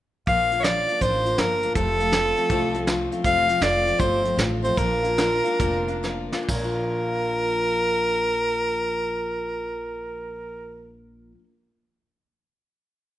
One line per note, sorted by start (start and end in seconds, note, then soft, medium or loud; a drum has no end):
0.27 0.83 A#1 medium
0.27 0.52 A#2 medium
0.27 0.52 F3 medium
0.27 0.52 A#3 medium
0.27 0.51 D4 medium
0.27 0.50 F4 medium
0.27 0.62 F5 loud
0.27 kick loud
0.27 closed hi-hat medium
0.52 0.65 A#3 soft
0.52 0.65 D4 soft
0.52 0.64 F4 soft
0.52 closed hi-hat medium
0.60 0.65 C#5 medium
0.60 1.03 D5 medium
0.64 0.89 F3 medium
0.64 0.89 A#3 medium
0.64 0.89 D4 medium
0.64 0.88 F4 medium
0.64 snare loud
0.64 closed hi-hat medium
0.89 1.01 A#3 soft
0.89 1.02 D4 soft
0.89 1.02 F4 soft
0.89 closed hi-hat medium
1.01 1.33 A1 medium
1.01 1.26 A#2 medium
1.01 1.26 F3 medium
1.01 1.26 A#3 medium
1.01 1.26 D4 medium
1.01 1.25 F4 medium
1.01 1.40 C5 medium
1.01 kick medium
1.01 closed hi-hat medium
1.26 1.38 A#3 soft
1.26 1.39 D4 soft
1.26 1.39 F4 medium
1.26 closed hi-hat medium
1.38 1.70 G1 medium
1.38 1.63 F3 medium
1.38 1.63 A#3 medium
1.38 1.63 D4 medium
1.38 1.62 F4 medium
1.38 1.75 A#4 medium
1.38 snare medium
1.38 closed hi-hat medium
1.62 1.76 A#3 soft
1.62 1.76 D4 soft
1.62 1.76 F4 soft
1.62 closed hi-hat medium
1.75 2.31 F1 medium
1.75 2.00 F2 medium
1.75 2.00 C3 medium
1.75 2.00 F3 medium
1.75 2.00 A3 medium
1.75 1.99 C4 medium
1.75 1.98 F4 medium
1.75 3.07 A4 medium
1.75 kick loud
1.75 closed hi-hat medium
2.00 2.11 F3 soft
2.00 2.12 A3 soft
2.00 2.12 C4 soft
2.00 2.13 F4 soft
2.00 closed hi-hat medium
2.12 2.37 F3 medium
2.12 2.37 A3 medium
2.12 2.36 F4 medium
2.12 snare loud
2.12 closed hi-hat medium
2.37 2.50 F3 soft
2.37 2.50 A3 soft
2.37 2.50 C4 medium
2.37 2.50 F4 soft
2.37 closed hi-hat medium
2.50 3.06 C2 medium
2.50 2.75 F2 medium
2.50 2.75 C3 medium
2.50 2.75 F3 medium
2.50 2.75 A3 medium
2.50 2.74 C4 medium
2.50 2.73 F4 medium
2.50 kick medium
2.50 closed hi-hat medium
2.74 2.86 F3 soft
2.74 2.87 A3 medium
2.74 2.88 C4 soft
2.74 2.87 F4 medium
2.74 closed hi-hat medium
2.87 3.12 F3 medium
2.87 3.12 A3 medium
2.87 3.11 C4 medium
2.87 3.10 F4 medium
2.87 snare medium
2.87 closed hi-hat medium
3.11 3.24 F3 soft
3.11 3.24 A3 soft
3.11 3.24 C4 medium
3.11 3.24 F4 medium
3.11 closed hi-hat medium
3.24 3.52 F1 medium
3.24 3.49 F2 medium
3.24 3.49 C3 medium
3.24 3.49 F3 medium
3.24 3.49 A3 medium
3.24 3.48 C4 medium
3.24 3.47 F4 medium
3.24 3.64 F5 loud
3.24 kick loud
3.24 closed hi-hat medium
3.48 3.59 F3 soft
3.48 3.60 A3 soft
3.48 3.61 C4 soft
3.48 3.61 F4 soft
3.48 closed hi-hat medium
3.61 3.94 F1 medium
3.61 3.86 F3 medium
3.61 3.86 A3 medium
3.61 3.85 C4 medium
3.61 3.84 F4 medium
3.61 4.01 D5 medium
3.61 snare medium
3.61 closed hi-hat medium
3.85 3.98 F3 soft
3.85 3.98 A3 soft
3.85 3.99 C4 soft
3.85 3.99 F4 soft
3.85 closed hi-hat medium
3.99 4.32 G1 medium
3.99 4.24 F2 medium
3.99 4.24 C3 medium
3.99 4.24 F3 medium
3.99 4.23 A3 medium
3.99 4.23 C4 medium
3.99 4.22 F4 medium
3.99 4.38 C5 medium
3.99 kick loud
3.99 closed hi-hat medium
4.23 4.35 F3 soft
4.23 4.36 A3 soft
4.23 4.37 C4 soft
4.23 4.37 F4 soft
4.23 closed hi-hat medium
4.36 4.71 A1 medium
4.36 4.63 F3 medium
4.36 4.63 A3 medium
4.36 4.62 C4 medium
4.36 4.61 F4 medium
4.36 snare loud
4.36 closed hi-hat medium
4.63 4.76 F3 soft
4.63 4.77 A3 soft
4.63 4.77 C4 soft
4.63 4.77 F4 medium
4.63 4.79 C5 medium
4.63 closed hi-hat medium
4.76 5.39 A#1 medium
4.76 5.03 A#2 medium
4.76 5.04 F3 medium
4.76 5.04 A#3 medium
4.76 5.03 D4 medium
4.76 5.01 F4 medium
4.76 6.33 A#4 medium
4.76 kick loud
4.76 closed hi-hat medium
5.03 5.17 A#3 soft
5.03 5.17 D4 soft
5.03 5.17 F4 soft
5.03 closed hi-hat medium
5.17 5.45 F3 medium
5.17 5.45 A#3 medium
5.17 5.44 D4 medium
5.17 5.43 F4 medium
5.17 snare medium
5.17 closed hi-hat medium
5.44 5.59 A#3 soft
5.44 5.59 D4 soft
5.44 5.59 F4 medium
5.44 closed hi-hat medium
5.59 6.26 F1 medium
5.59 5.88 A#2 medium
5.59 5.88 F3 medium
5.59 5.88 A#3 medium
5.59 5.88 D4 medium
5.59 5.87 F4 medium
5.59 kick loud
5.59 closed hi-hat medium
5.88 6.02 A#3 soft
5.88 6.04 D4 medium
5.88 6.03 F4 medium
5.88 closed hi-hat medium
6.03 6.33 F3 medium
6.03 6.33 A#3 medium
6.03 6.33 D4 medium
6.03 6.31 F4 medium
6.03 snare soft
6.32 6.50 A#3 soft
6.32 6.49 D4 soft
6.32 6.49 F4 medium
6.32 snare medium
6.43 11.32 A#2 medium
6.48 11.34 A#1 medium
6.48 11.39 F3 medium
6.48 10.96 A#4 medium
6.48 kick medium
6.48 crash medium
6.54 11.44 A#3 medium
6.60 11.49 D4 medium
6.64 11.53 F4 medium